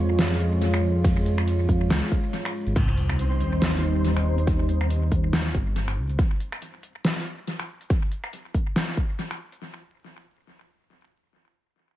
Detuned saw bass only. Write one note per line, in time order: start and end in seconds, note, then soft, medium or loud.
0.00 1.68 F2 medium
1.69 1.90 F2 medium
1.90 2.01 C#2 medium
2.67 2.75 G#1 medium
2.76 3.42 C2 loud
3.40 5.10 D#2 medium
5.12 5.53 D#2 medium
5.54 5.99 G1 loud
5.97 6.17 C#2 medium